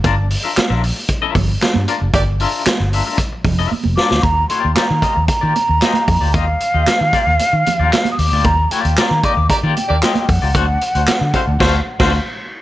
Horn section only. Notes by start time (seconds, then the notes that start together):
2.14 A#3 D4 G4 D5
9.24 A#3 D4 G4 D5
9.50 A#3 D4 G4 D5
9.88 A#3 D4 G4 D5
11.34 A3 C4 F#4 C5
11.61 A3 C4 F#4 C5
12.00 A3 C4 F#4 C5